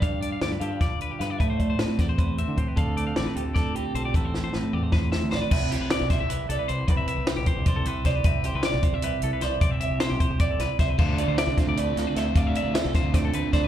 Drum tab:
CC |-------|-------|-------|-------|
HH |xxxxxxx|xxxxxxx|xxxxxxx|x------|
SD |--o-o-o|--oo---|--o-o--|-oo-ooo|
BD |o---o--|oo-oo-o|o---o--|o---o--|

CC |x------|-------|-------|-------|
HH |-xxxxxx|xxxxxxx|xxxxxxx|xxxxxxx|
SD |-ooo---|--o---o|--o---o|--o--oo|
BD |o--o---|o--oo-o|o--o---|o--oo-o|

CC |x------|-------|
HH |-xxxxxx|xxxxxxx|
SD |--oo-oo|--ooo-o|
BD |o--o---|o--oo-o|